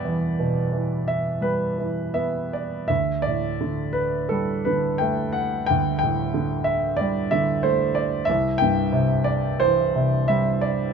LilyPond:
<<
  \new Staff \with { instrumentName = "Grand piano" } { \time 4/4 \key d \mixolydian \tempo 4 = 87 d''4. e''8 b'4 e''8 d''8 | e''8 d''4 b'8 a'8 b'8 g''8 fis''8 | g''8 g''4 e''8 d''8 e''8 c''8 d''8 | e''8 g''4 d''8 c''4 e''8 d''8 | }
  \new Staff \with { instrumentName = "Grand piano" } { \clef bass \time 4/4 \key d \mixolydian <e, e b>8 b,8 e4 g8 e8 b4 | d,8 a,8 d4 g8 d8 a4 | d,8 a,8 d4 g8 d8 a4 | c,8 g,8 c4 e8 c8 g4 | }
>>